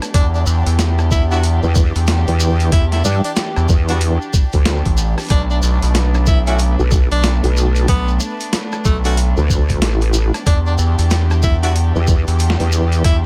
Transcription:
Already playing: string section A3 B3 D4
0.02 cross-stick, closed hi-hat, shekere
0.14 analog synth bass E2, string section E3 D4 G4, tenor saxophone D4, kick, cross-stick, closed hi-hat, shekere
0.34 tenor saxophone D4, shekere
0.46 analog synth bass E2, shekere
0.66 analog synth bass E2, closed hi-hat, shekere
0.79 snare, closed hi-hat, shekere
0.99 cross-stick, shekere
1.11 tenor saxophone E4, kick, shekere
1.31 horn section G3 B3 D4 F#4, tenor saxophone E4, shekere
1.43 closed hi-hat, shekere
1.63 wobble bass E2, shekere
1.75 kick, shekere
1.96 analog synth bass E2, closed hi-hat, shekere
2.07 snare, closed hi-hat, shekere
2.27 wobble bass E2, closed hi-hat, shekere
2.40 shekere
2.60 closed hi-hat, shekere
2.72 analog synth bass E2, tenor saxophone E4, kick, cross-stick, closed hi-hat, shekere
2.92 tenor saxophone E4, snare, closed hi-hat, shekere
3.05 wobble bass G2, tenor saxophone D4, shekere
3.24 tenor saxophone D4, closed hi-hat, shekere
3.36 snare, closed hi-hat, shekere
3.56 analog synth bass E2, cross-stick, shekere
3.69 wobble bass E2, kick, shekere
3.88 horn section G3 B3 D4 F#4, closed hi-hat, shekere
4.01 closed hi-hat, shekere
4.21 shekere
4.34 kick, shekere
4.52 wobble bass D2, kick, closed hi-hat, shekere
4.65 snare, closed hi-hat, shekere
4.85 analog synth bass A1, kick, closed hi-hat, shekere
4.97 shekere
5.18 cross-stick, closed hi-hat, shekere
5.20 closed hi-hat
5.21 closed hi-hat
5.23 closed hi-hat
5.25 closed hi-hat
5.27 closed hi-hat
5.28 tenor saxophone D4, cross-stick, closed hi-hat, shekere
5.30 analog synth bass B1, string section A3 B3, kick, closed hi-hat
5.50 tenor saxophone D4, shekere
5.62 analog synth bass B1, shekere
5.82 analog synth bass B1, closed hi-hat, shekere
5.95 snare, closed hi-hat, shekere
6.14 cross-stick, shekere
6.26 tenor saxophone E4, kick, shekere
6.47 horn section A3 C#4 D4 F#4, tenor saxophone E4, closed hi-hat, shekere
6.58 closed hi-hat, shekere
6.79 wobble bass B1, shekere
6.91 kick, shekere
7.11 analog synth bass B1, tenor saxophone D4, closed hi-hat, shekere
7.23 snare, closed hi-hat, shekere
7.44 wobble bass B1, closed hi-hat, shekere
7.57 shekere
7.76 closed hi-hat, shekere
7.88 analog synth bass B1, tenor saxophone B3, kick, cross-stick, closed hi-hat, shekere
8.08 shekere
8.20 shekere
8.40 closed hi-hat, shekere
8.53 snare, closed hi-hat, shekere
8.72 cross-stick, shekere
8.85 analog synth bass B1, tenor saxophone A3, kick, shekere
9.05 horn section A3 C#4 D4 F#4, tenor saxophone A3, closed hi-hat, shekere
9.17 closed hi-hat, shekere
9.37 wobble bass D2, shekere
9.50 kick, shekere
9.69 kick, closed hi-hat, shekere
9.82 wobble bass A1, snare, closed hi-hat, shekere
10.01 closed hi-hat, shekere
10.14 shekere
10.34 cross-stick, closed hi-hat, shekere
10.46 analog synth bass E2, string section E3 G4, tenor saxophone D4, kick, cross-stick, closed hi-hat, shekere
10.66 tenor saxophone D4, shekere
10.78 analog synth bass E2, shekere
10.99 analog synth bass E2, closed hi-hat, shekere
11.10 snare, closed hi-hat, shekere
11.31 cross-stick, shekere
11.43 tenor saxophone E4, kick, shekere
11.63 horn section G3 B3 D4 F#4, tenor saxophone E4, closed hi-hat, shekere
11.75 closed hi-hat, shekere
11.95 wobble bass E2, shekere
12.07 kick, shekere
12.28 analog synth bass E2, closed hi-hat, shekere
12.39 closed hi-hat, shekere
12.50 snare
12.60 wobble bass E2, closed hi-hat, shekere
12.72 shekere
12.92 closed hi-hat, shekere
13.04 analog synth bass E2, tenor saxophone E4, kick, cross-stick, closed hi-hat, shekere

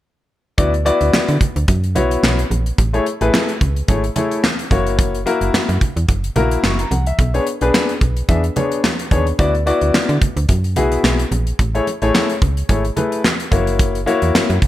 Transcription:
0.58 fm bass D2, grand piano B3 E4 F#4 D5, kick, closed hi-hat, muted conga
0.74 closed hi-hat
0.85 grand piano B3 E4 F#4 D5, closed hi-hat, muted conga
1.01 fm bass D2, closed hi-hat
1.13 fm bass D3, snare, clap, high conga
1.28 fm bass D3, closed hi-hat
1.41 kick, closed hi-hat, low conga
1.56 fm bass D2, closed hi-hat
1.68 fm bass F#2, kick, closed hi-hat, muted conga
1.84 closed hi-hat
1.95 fm bass B1, grand piano B3 E4 F#4 C#5, closed hi-hat, muted conga, low conga
2.11 closed hi-hat
2.23 fm bass B1, snare, clap, high conga
2.39 closed hi-hat
2.51 fm bass A#1, closed hi-hat, high conga
2.66 closed hi-hat
2.78 fm bass A1, kick, closed hi-hat, muted conga
2.93 grand piano A3 E4 G#4 C#5, closed hi-hat
3.06 closed hi-hat
3.21 fm bass A1, grand piano A3 E4 G#4 B4, closed hi-hat
3.34 snare, clap, high conga
3.49 closed hi-hat
3.61 fm bass C#2, kick, closed hi-hat, low conga
3.76 closed hi-hat
3.88 fm bass G#1, grand piano A3 E4 G#4 C#5, kick, closed hi-hat, muted conga
4.04 closed hi-hat
4.16 grand piano A3 E4 G#4 C#5, closed hi-hat, muted conga, low conga
4.32 closed hi-hat
4.44 snare, clap, high conga
4.59 closed hi-hat
4.71 fm bass F#1, grand piano A#3 E4 F#4 C#5, kick, closed hi-hat, high conga
4.87 closed hi-hat
4.99 kick, closed hi-hat, muted conga
5.15 closed hi-hat
5.26 grand piano A#3 E4 F#4 A#4, closed hi-hat, muted conga
5.41 fm bass F#1, closed hi-hat
5.53 fm bass F#2, snare, clap, high conga
5.69 fm bass F#2, closed hi-hat
5.81 kick, closed hi-hat, low conga
5.96 fm bass E2, closed hi-hat
6.08 fm bass F#1, kick, closed hi-hat, muted conga
6.24 closed hi-hat
6.36 fm bass A#1, grand piano A#3 E4 F#4 A#4, closed hi-hat, muted conga, low conga
6.51 closed hi-hat
6.63 fm bass F#1, grand piano C#6, snare, clap, high conga
6.79 grand piano A#5, closed hi-hat
6.91 fm bass C2, grand piano F#5, closed hi-hat, high conga
7.07 grand piano E5, closed hi-hat
7.19 fm bass B1, kick, closed hi-hat, muted conga
7.34 grand piano B3 D4 G#4 C#5, closed hi-hat
7.47 closed hi-hat
7.61 fm bass B1, grand piano B3 D4 G#4 B4, closed hi-hat
7.74 snare, clap, high conga
7.89 closed hi-hat
8.01 fm bass B1, kick, closed hi-hat
8.17 closed hi-hat
8.29 fm bass E2, grand piano B3 D4 G#4 E5, kick, closed hi-hat, muted conga
8.44 closed hi-hat
8.56 grand piano B3 D4 G#4 C#5, closed hi-hat, muted conga, low conga
8.72 closed hi-hat
8.84 snare, clap, high conga
8.99 closed hi-hat
9.11 fm bass D#2, grand piano B3 D4 G#4 C#5, kick, closed hi-hat, high conga
9.27 closed hi-hat
9.39 fm bass D2, grand piano B3 E4 F#4 D5, kick, closed hi-hat, muted conga
9.55 closed hi-hat
9.66 grand piano B3 E4 F#4 D5, closed hi-hat
9.81 fm bass D2, closed hi-hat
9.94 fm bass D3, snare, clap, high conga
10.09 fm bass D3, closed hi-hat
10.22 kick, closed hi-hat, low conga
10.36 fm bass D2, closed hi-hat
10.49 fm bass F#2, kick, closed hi-hat, muted conga
10.64 closed hi-hat
10.76 fm bass B1, grand piano B3 E4 F#4 G#4, closed hi-hat, muted conga, low conga
10.92 closed hi-hat
11.04 fm bass B1, snare, clap, high conga
11.19 closed hi-hat
11.31 fm bass A#1, closed hi-hat, high conga
11.47 closed hi-hat
11.59 fm bass A1, kick, closed hi-hat, muted conga
11.74 grand piano A3 E4 G#4 C#5, closed hi-hat
11.87 closed hi-hat, muted conga
12.02 fm bass A1, grand piano A3 E4 G#4 C#5, closed hi-hat
12.15 snare, clap, high conga
12.30 closed hi-hat
12.42 fm bass C#2, kick, closed hi-hat, low conga
12.57 closed hi-hat
12.69 fm bass G#1, grand piano A3 E4 G#4 C#5, kick, closed hi-hat, muted conga
12.85 closed hi-hat
12.96 grand piano A3 E4 G#4 B4, closed hi-hat, muted conga, low conga
13.12 closed hi-hat
13.24 snare, clap, high conga
13.40 closed hi-hat
13.51 fm bass F#1, grand piano A#3 E4 F#4 C#5, kick, closed hi-hat, high conga
13.67 closed hi-hat
13.79 kick, closed hi-hat, muted conga
13.95 closed hi-hat
14.06 grand piano A#3 E4 F#4 C#5, closed hi-hat, muted conga
14.22 fm bass E2, closed hi-hat
14.35 snare, clap, high conga
14.50 fm bass F#2, closed hi-hat
14.62 kick, closed hi-hat, low conga

